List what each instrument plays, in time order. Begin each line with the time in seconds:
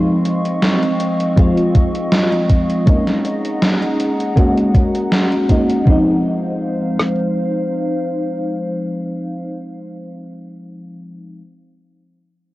Already playing: fm electric piano F3 G#3 C4 D#4, ambient pad C4 D#5 F5 C#6
0.25 closed hi-hat
0.45 closed hi-hat
0.62 snare, closed hi-hat
0.83 closed hi-hat
1.00 closed hi-hat
1.20 closed hi-hat
1.36 fm electric piano F3 G#3 C4 F4, kick, closed hi-hat
1.57 closed hi-hat
1.75 kick, closed hi-hat
1.95 closed hi-hat
2.12 snare, closed hi-hat
2.32 closed hi-hat
2.50 kick, closed hi-hat
2.70 closed hi-hat
2.86 fm electric piano G#3 A#3 C#4 D#4, ambient pad G#4 F#5 A#5, kick, closed hi-hat
3.07 snare, closed hi-hat
3.25 closed hi-hat
3.45 closed hi-hat
3.62 snare, closed hi-hat
3.82 closed hi-hat
4.00 closed hi-hat
4.20 closed hi-hat
4.36 fm electric piano G#3 A#3 C#4 F#4, kick, closed hi-hat
4.58 closed hi-hat
4.75 kick, closed hi-hat
4.95 closed hi-hat
5.12 snare, closed hi-hat
5.32 closed hi-hat
5.49 fm electric piano G#3 A#3 C#4 D#4, kick, closed hi-hat
5.69 closed hi-hat
5.85 fm electric piano F3 G#3 C4, ambient pad D#4 C5 F5, kick
5.90 fm electric piano D#4
7.00 cross-stick